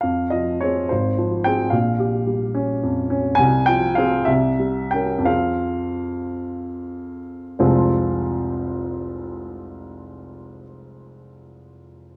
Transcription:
0, 0, Header, 1, 2, 480
1, 0, Start_track
1, 0, Key_signature, -4, "minor"
1, 0, Tempo, 555556
1, 45, Time_signature, 6, 3, 24, 8
1, 2923, Tempo, 607903
1, 3883, Tempo, 685714
1, 4363, Tempo, 751880
1, 5323, Tempo, 787402
1, 6763, Tempo, 768246
1, 8647, End_track
2, 0, Start_track
2, 0, Title_t, "Upright piano"
2, 0, Program_c, 0, 0
2, 7, Note_on_c, 0, 77, 57
2, 27, Note_on_c, 0, 41, 44
2, 203, Control_c, 0, 64, 127
2, 262, Note_on_c, 0, 75, 57
2, 274, Note_off_c, 0, 77, 0
2, 281, Note_on_c, 0, 53, 31
2, 522, Note_off_c, 0, 75, 0
2, 523, Note_on_c, 0, 73, 59
2, 545, Note_on_c, 0, 60, 35
2, 545, Note_on_c, 0, 68, 32
2, 677, Note_off_c, 0, 53, 0
2, 748, Note_off_c, 0, 41, 0
2, 759, Note_off_c, 0, 68, 0
2, 760, Note_off_c, 0, 60, 0
2, 771, Note_on_c, 0, 72, 53
2, 772, Note_off_c, 0, 73, 0
2, 790, Note_on_c, 0, 32, 49
2, 794, Control_c, 0, 64, 0
2, 928, Control_c, 0, 64, 127
2, 1023, Note_on_c, 0, 53, 39
2, 1248, Note_on_c, 0, 79, 77
2, 1251, Note_off_c, 0, 72, 0
2, 1263, Note_on_c, 0, 60, 34
2, 1271, Note_on_c, 0, 68, 41
2, 1397, Note_off_c, 0, 53, 0
2, 1470, Note_off_c, 0, 60, 0
2, 1470, Note_on_c, 0, 77, 59
2, 1473, Note_off_c, 0, 32, 0
2, 1474, Note_off_c, 0, 68, 0
2, 1485, Note_off_c, 0, 79, 0
2, 1487, Note_on_c, 0, 34, 51
2, 1503, Control_c, 0, 64, 0
2, 1654, Control_c, 0, 64, 127
2, 1724, Note_on_c, 0, 67, 44
2, 1963, Note_on_c, 0, 55, 40
2, 2105, Note_off_c, 0, 67, 0
2, 2199, Note_on_c, 0, 61, 55
2, 2346, Note_off_c, 0, 55, 0
2, 2447, Note_on_c, 0, 41, 43
2, 2584, Note_off_c, 0, 61, 0
2, 2671, Note_off_c, 0, 77, 0
2, 2679, Note_on_c, 0, 61, 55
2, 2828, Note_off_c, 0, 41, 0
2, 2887, Note_off_c, 0, 34, 0
2, 2895, Note_on_c, 0, 80, 91
2, 2921, Note_on_c, 0, 36, 64
2, 2922, Note_off_c, 0, 61, 0
2, 2935, Control_c, 0, 64, 0
2, 3067, Control_c, 0, 64, 127
2, 3139, Note_off_c, 0, 80, 0
2, 3141, Note_on_c, 0, 79, 86
2, 3160, Note_on_c, 0, 53, 44
2, 3372, Note_on_c, 0, 77, 74
2, 3382, Note_off_c, 0, 79, 0
2, 3393, Note_on_c, 0, 68, 46
2, 3394, Note_on_c, 0, 60, 47
2, 3537, Note_off_c, 0, 53, 0
2, 3608, Note_off_c, 0, 36, 0
2, 3608, Note_on_c, 0, 76, 77
2, 3609, Note_off_c, 0, 68, 0
2, 3610, Note_off_c, 0, 60, 0
2, 3623, Note_off_c, 0, 77, 0
2, 3623, Note_on_c, 0, 36, 57
2, 3644, Control_c, 0, 64, 0
2, 3793, Control_c, 0, 64, 127
2, 3880, Note_on_c, 0, 55, 45
2, 4099, Note_on_c, 0, 79, 64
2, 4107, Note_off_c, 0, 76, 0
2, 4117, Note_on_c, 0, 61, 35
2, 4122, Note_on_c, 0, 70, 43
2, 4261, Note_off_c, 0, 55, 0
2, 4292, Note_on_c, 0, 41, 50
2, 4336, Note_on_c, 0, 60, 35
2, 4337, Note_on_c, 0, 53, 35
2, 4339, Note_off_c, 0, 36, 0
2, 4339, Note_off_c, 0, 61, 0
2, 4341, Note_off_c, 0, 70, 0
2, 4342, Note_on_c, 0, 77, 70
2, 4351, Note_on_c, 0, 68, 33
2, 4354, Note_off_c, 0, 79, 0
2, 4376, Control_c, 0, 64, 0
2, 4505, Control_c, 0, 64, 127
2, 5558, Note_off_c, 0, 77, 0
2, 5756, Note_off_c, 0, 41, 0
2, 5775, Note_off_c, 0, 53, 0
2, 5775, Note_off_c, 0, 60, 0
2, 5781, Note_off_c, 0, 68, 0
2, 5812, Note_on_c, 0, 29, 63
2, 5814, Note_on_c, 0, 56, 49
2, 5816, Note_on_c, 0, 60, 52
2, 5817, Note_on_c, 0, 36, 49
2, 5818, Note_on_c, 0, 53, 56
2, 5819, Note_on_c, 0, 65, 51
2, 5829, Control_c, 0, 64, 0
2, 5981, Control_c, 0, 64, 127
2, 7675, Note_off_c, 0, 29, 0
2, 7678, Note_off_c, 0, 56, 0
2, 7680, Note_off_c, 0, 60, 0
2, 7681, Note_off_c, 0, 36, 0
2, 7682, Note_off_c, 0, 53, 0
2, 7683, Note_off_c, 0, 65, 0
2, 8647, End_track
0, 0, End_of_file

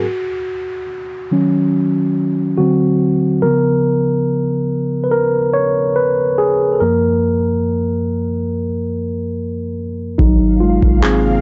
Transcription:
0, 0, Header, 1, 6, 480
1, 0, Start_track
1, 0, Tempo, 845070
1, 29, Time_signature, 4, 2, 24, 8
1, 6481, End_track
2, 0, Start_track
2, 0, Title_t, "Tine electric piano"
2, 0, Program_c, 0, 4
2, 0, Control_c, 0, 64, 127
2, 0, Note_on_c, 0, 66, 79
2, 35, Control_c, 0, 64, 0
2, 123, Control_c, 0, 64, 127
2, 483, Note_off_c, 0, 66, 0
2, 746, Note_on_c, 0, 51, 53
2, 750, Note_on_c, 0, 54, 48
2, 754, Note_on_c, 0, 61, 59
2, 1445, Note_off_c, 0, 51, 0
2, 1447, Note_off_c, 0, 54, 0
2, 1449, Note_off_c, 0, 61, 0
2, 1463, Note_on_c, 0, 66, 81
2, 1467, Note_on_c, 0, 50, 56
2, 1470, Note_on_c, 0, 54, 49
2, 1474, Note_on_c, 0, 60, 61
2, 1478, Control_c, 0, 64, 0
2, 1581, Control_c, 0, 64, 127
2, 1926, Note_off_c, 0, 50, 0
2, 1927, Note_off_c, 0, 54, 0
2, 1929, Note_off_c, 0, 60, 0
2, 1944, Note_on_c, 0, 70, 89
2, 1948, Note_on_c, 0, 49, 52
2, 1950, Note_on_c, 0, 53, 48
2, 1954, Note_on_c, 0, 59, 54
2, 1956, Control_c, 0, 64, 0
2, 1961, Note_off_c, 0, 66, 0
2, 2052, Control_c, 0, 64, 127
2, 2268, Note_off_c, 0, 49, 0
2, 2269, Note_off_c, 0, 53, 0
2, 2271, Note_off_c, 0, 59, 0
2, 2844, Note_off_c, 0, 70, 0
2, 2861, Note_on_c, 0, 71, 65
2, 2905, Note_off_c, 0, 71, 0
2, 2905, Note_on_c, 0, 70, 91
2, 3014, Note_off_c, 0, 70, 0
2, 3144, Note_on_c, 0, 73, 95
2, 3385, Note_on_c, 0, 71, 95
2, 3394, Note_off_c, 0, 73, 0
2, 3625, Note_on_c, 0, 68, 91
2, 3634, Note_off_c, 0, 71, 0
2, 3821, Note_on_c, 0, 69, 59
2, 3833, Note_off_c, 0, 68, 0
2, 3865, Note_off_c, 0, 69, 0
2, 3865, Note_on_c, 0, 70, 81
2, 3868, Note_on_c, 0, 42, 50
2, 3870, Note_on_c, 0, 53, 47
2, 3875, Note_on_c, 0, 58, 57
2, 3878, Control_c, 0, 64, 0
2, 3965, Control_c, 0, 64, 127
2, 4188, Note_off_c, 0, 42, 0
2, 4189, Note_off_c, 0, 53, 0
2, 4191, Note_off_c, 0, 58, 0
2, 5524, Note_off_c, 0, 70, 0
2, 5784, Note_on_c, 0, 63, 75
2, 5793, Note_on_c, 0, 54, 57
2, 5797, Control_c, 0, 64, 0
2, 5908, Control_c, 0, 64, 127
2, 6009, Note_off_c, 0, 63, 0
2, 6015, Note_off_c, 0, 54, 0
2, 6023, Note_on_c, 0, 65, 74
2, 6034, Note_on_c, 0, 56, 61
2, 6255, Note_off_c, 0, 56, 0
2, 6263, Note_on_c, 0, 68, 85
2, 6273, Note_off_c, 0, 65, 0
2, 6274, Note_on_c, 0, 60, 65
2, 6481, Note_off_c, 0, 60, 0
2, 6481, Note_off_c, 0, 68, 0
2, 6481, End_track
3, 0, Start_track
3, 0, Title_t, "Ambient pad"
3, 0, Program_c, 1, 92
3, 5788, Note_on_c, 1, 48, 82
3, 5789, Note_on_c, 1, 54, 72
3, 5789, Note_on_c, 1, 58, 77
3, 5789, Note_on_c, 1, 77, 87
3, 6481, Note_off_c, 1, 48, 0
3, 6481, Note_off_c, 1, 54, 0
3, 6481, Note_off_c, 1, 58, 0
3, 6481, Note_off_c, 1, 77, 0
3, 6481, End_track
4, 0, Start_track
4, 0, Title_t, "808-style bass"
4, 0, Program_c, 2, 38
4, 5789, Note_on_c, 2, 32, 99
4, 6135, Note_off_c, 2, 32, 0
4, 6149, Note_on_c, 2, 32, 94
4, 6481, Note_off_c, 2, 32, 0
4, 6481, End_track
5, 0, Start_track
5, 0, Title_t, "Downlifter"
5, 0, Program_c, 3, 103
5, 0, Note_on_c, 3, 60, 74
5, 1949, Note_off_c, 3, 60, 0
5, 6481, End_track
6, 0, Start_track
6, 0, Title_t, "Drums"
6, 5789, Note_on_c, 9, 36, 97
6, 5846, Note_off_c, 9, 36, 0
6, 6149, Note_on_c, 9, 36, 92
6, 6206, Note_off_c, 9, 36, 0
6, 6268, Note_on_c, 9, 39, 104
6, 6325, Note_off_c, 9, 39, 0
6, 6481, End_track
0, 0, End_of_file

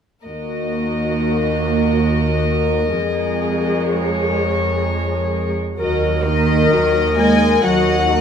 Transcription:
0, 0, Header, 1, 7, 480
1, 0, Start_track
1, 0, Key_signature, -6, "minor"
1, 0, Tempo, 936037
1, 127, Time_signature, 3, 2, 24, 8
1, 606, Tempo, 903614
1, 2046, Tempo, 934579
1, 4262, End_track
2, 0, Start_track
2, 0, Title_t, "Violin section"
2, 0, Program_c, 0, 48
2, 3249, Note_on_c, 0, 75, 50
2, 3710, Note_off_c, 0, 75, 0
2, 3731, Note_on_c, 0, 80, 54
2, 3971, Note_off_c, 0, 80, 0
2, 3976, Note_on_c, 0, 78, 54
2, 4262, Note_off_c, 0, 78, 0
2, 4262, End_track
3, 0, Start_track
3, 0, Title_t, "Violin section"
3, 0, Program_c, 1, 48
3, 131, Note_on_c, 1, 70, 29
3, 132, Note_on_c, 1, 75, 30
3, 2028, Note_off_c, 1, 75, 0
3, 2057, Note_on_c, 1, 73, 43
3, 2894, Note_off_c, 1, 70, 0
3, 2917, Note_off_c, 1, 73, 0
3, 3027, Note_on_c, 1, 70, 34
3, 3027, Note_on_c, 1, 75, 34
3, 3247, Note_off_c, 1, 70, 0
3, 3247, Note_off_c, 1, 75, 0
3, 3263, Note_on_c, 1, 70, 30
3, 3264, Note_on_c, 1, 75, 30
3, 3494, Note_off_c, 1, 75, 0
3, 3497, Note_off_c, 1, 70, 0
3, 3500, Note_on_c, 1, 75, 31
3, 3503, Note_on_c, 1, 70, 34
3, 3736, Note_off_c, 1, 75, 0
3, 3738, Note_off_c, 1, 70, 0
3, 3743, Note_on_c, 1, 75, 35
3, 3745, Note_on_c, 1, 70, 38
3, 3968, Note_off_c, 1, 75, 0
3, 3970, Note_off_c, 1, 70, 0
3, 3974, Note_on_c, 1, 75, 33
3, 3976, Note_on_c, 1, 70, 36
3, 4193, Note_off_c, 1, 75, 0
3, 4194, Note_off_c, 1, 70, 0
3, 4222, Note_on_c, 1, 70, 36
3, 4222, Note_on_c, 1, 75, 35
3, 4262, Note_off_c, 1, 70, 0
3, 4262, Note_off_c, 1, 75, 0
3, 4262, End_track
4, 0, Start_track
4, 0, Title_t, "Clarinet"
4, 0, Program_c, 2, 71
4, 3009, Note_on_c, 2, 70, 48
4, 3966, Note_on_c, 2, 66, 41
4, 3974, Note_off_c, 2, 70, 0
4, 4262, Note_off_c, 2, 66, 0
4, 4262, End_track
5, 0, Start_track
5, 0, Title_t, "Viola section"
5, 0, Program_c, 3, 48
5, 130, Note_on_c, 3, 58, 28
5, 133, Note_on_c, 3, 66, 28
5, 1547, Note_off_c, 3, 58, 0
5, 1549, Note_off_c, 3, 66, 0
5, 1568, Note_on_c, 3, 56, 41
5, 1572, Note_on_c, 3, 68, 42
5, 2892, Note_off_c, 3, 56, 0
5, 2894, Note_off_c, 3, 68, 0
5, 3018, Note_on_c, 3, 54, 31
5, 3018, Note_on_c, 3, 66, 31
5, 3242, Note_off_c, 3, 54, 0
5, 3242, Note_off_c, 3, 66, 0
5, 3259, Note_on_c, 3, 63, 32
5, 3261, Note_on_c, 3, 58, 32
5, 3498, Note_off_c, 3, 63, 0
5, 3498, Note_on_c, 3, 54, 32
5, 3499, Note_off_c, 3, 58, 0
5, 3500, Note_on_c, 3, 66, 33
5, 3736, Note_off_c, 3, 54, 0
5, 3736, Note_off_c, 3, 66, 0
5, 3736, Note_on_c, 3, 63, 34
5, 3737, Note_on_c, 3, 58, 36
5, 3972, Note_on_c, 3, 54, 35
5, 3973, Note_off_c, 3, 63, 0
5, 3974, Note_off_c, 3, 58, 0
5, 3974, Note_on_c, 3, 66, 31
5, 4192, Note_off_c, 3, 54, 0
5, 4193, Note_off_c, 3, 66, 0
5, 4204, Note_on_c, 3, 63, 35
5, 4205, Note_on_c, 3, 58, 36
5, 4262, Note_off_c, 3, 58, 0
5, 4262, Note_off_c, 3, 63, 0
5, 4262, End_track
6, 0, Start_track
6, 0, Title_t, "Cello section"
6, 0, Program_c, 4, 48
6, 129, Note_on_c, 4, 39, 34
6, 1546, Note_off_c, 4, 39, 0
6, 1566, Note_on_c, 4, 41, 44
6, 2912, Note_off_c, 4, 41, 0
6, 3255, Note_on_c, 4, 51, 41
6, 3713, Note_off_c, 4, 51, 0
6, 3731, Note_on_c, 4, 56, 44
6, 3967, Note_on_c, 4, 54, 42
6, 3971, Note_off_c, 4, 56, 0
6, 4262, Note_off_c, 4, 54, 0
6, 4262, End_track
7, 0, Start_track
7, 0, Title_t, "Double bass section"
7, 0, Program_c, 5, 48
7, 3019, Note_on_c, 5, 39, 36
7, 3442, Note_off_c, 5, 39, 0
7, 3495, Note_on_c, 5, 39, 35
7, 3915, Note_off_c, 5, 39, 0
7, 3971, Note_on_c, 5, 39, 42
7, 4262, Note_off_c, 5, 39, 0
7, 4262, End_track
0, 0, End_of_file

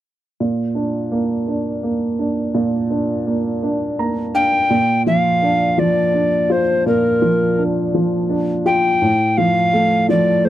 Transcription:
0, 0, Header, 1, 3, 480
1, 0, Start_track
1, 0, Key_signature, -2, "major"
1, 0, Tempo, 717703
1, 267, Time_signature, 6, 3, 24, 8
1, 7016, End_track
2, 0, Start_track
2, 0, Title_t, "Recorder"
2, 0, Program_c, 0, 74
2, 2909, Note_on_c, 0, 79, 85
2, 3361, Note_off_c, 0, 79, 0
2, 3391, Note_on_c, 0, 77, 91
2, 3874, Note_on_c, 0, 74, 73
2, 3884, Note_off_c, 0, 77, 0
2, 4359, Note_on_c, 0, 72, 64
2, 4369, Note_off_c, 0, 74, 0
2, 4593, Note_off_c, 0, 72, 0
2, 4598, Note_on_c, 0, 70, 65
2, 5106, Note_off_c, 0, 70, 0
2, 5792, Note_on_c, 0, 79, 90
2, 6271, Note_on_c, 0, 77, 89
2, 6281, Note_off_c, 0, 79, 0
2, 6750, Note_off_c, 0, 77, 0
2, 6753, Note_on_c, 0, 74, 72
2, 6990, Note_on_c, 0, 72, 76
2, 7000, Note_off_c, 0, 74, 0
2, 7016, Note_off_c, 0, 72, 0
2, 7016, End_track
3, 0, Start_track
3, 0, Title_t, "Upright piano"
3, 0, Program_c, 1, 0
3, 270, Note_on_c, 1, 46, 42
3, 405, Control_c, 1, 64, 127
3, 502, Note_on_c, 1, 62, 40
3, 747, Note_on_c, 1, 58, 40
3, 977, Note_off_c, 1, 62, 0
3, 987, Note_on_c, 1, 62, 39
3, 1215, Note_off_c, 1, 58, 0
3, 1225, Note_on_c, 1, 58, 38
3, 1455, Note_off_c, 1, 62, 0
3, 1465, Note_on_c, 1, 62, 43
3, 1681, Note_off_c, 1, 46, 0
3, 1702, Note_on_c, 1, 46, 50
3, 1933, Note_off_c, 1, 62, 0
3, 1943, Note_on_c, 1, 62, 43
3, 2159, Note_off_c, 1, 58, 0
3, 2184, Note_on_c, 1, 58, 40
3, 2417, Note_off_c, 1, 62, 0
3, 2427, Note_on_c, 1, 62, 43
3, 2657, Note_off_c, 1, 58, 0
3, 2667, Note_on_c, 1, 58, 41
3, 2671, Note_on_c, 1, 82, 55
3, 2892, Note_off_c, 1, 82, 0
3, 2895, Note_off_c, 1, 62, 0
3, 2905, Note_on_c, 1, 62, 44
3, 2906, Note_on_c, 1, 77, 52
3, 3118, Note_off_c, 1, 46, 0
3, 3129, Note_off_c, 1, 77, 0
3, 3133, Note_off_c, 1, 58, 0
3, 3138, Note_off_c, 1, 62, 0
3, 3146, Note_on_c, 1, 46, 54
3, 3156, Control_c, 1, 64, 0
3, 3265, Control_c, 1, 64, 127
3, 3387, Note_on_c, 1, 53, 43
3, 3628, Note_on_c, 1, 62, 43
3, 3855, Note_off_c, 1, 53, 0
3, 3865, Note_on_c, 1, 53, 43
3, 4096, Note_off_c, 1, 62, 0
3, 4106, Note_on_c, 1, 62, 47
3, 4345, Note_on_c, 1, 65, 46
3, 4560, Note_off_c, 1, 46, 0
3, 4591, Note_on_c, 1, 46, 54
3, 4799, Note_off_c, 1, 53, 0
3, 4827, Note_on_c, 1, 53, 43
3, 5040, Note_off_c, 1, 62, 0
3, 5070, Note_on_c, 1, 62, 44
3, 5280, Note_off_c, 1, 65, 0
3, 5302, Note_off_c, 1, 53, 0
3, 5312, Note_on_c, 1, 53, 45
3, 5538, Note_off_c, 1, 62, 0
3, 5548, Note_on_c, 1, 62, 47
3, 5789, Note_on_c, 1, 65, 47
3, 6003, Note_off_c, 1, 46, 0
3, 6009, Note_off_c, 1, 53, 0
3, 6014, Note_off_c, 1, 62, 0
3, 6021, Note_off_c, 1, 65, 0
3, 6030, Note_on_c, 1, 45, 54
3, 6036, Control_c, 1, 64, 0
3, 6169, Control_c, 1, 64, 127
3, 6272, Note_on_c, 1, 53, 43
3, 6509, Note_on_c, 1, 57, 45
3, 6737, Note_off_c, 1, 53, 0
3, 6747, Note_on_c, 1, 53, 47
3, 6973, Note_off_c, 1, 57, 0
3, 6983, Note_on_c, 1, 57, 45
3, 7016, Note_off_c, 1, 45, 0
3, 7016, Note_off_c, 1, 53, 0
3, 7016, Note_off_c, 1, 57, 0
3, 7016, End_track
0, 0, End_of_file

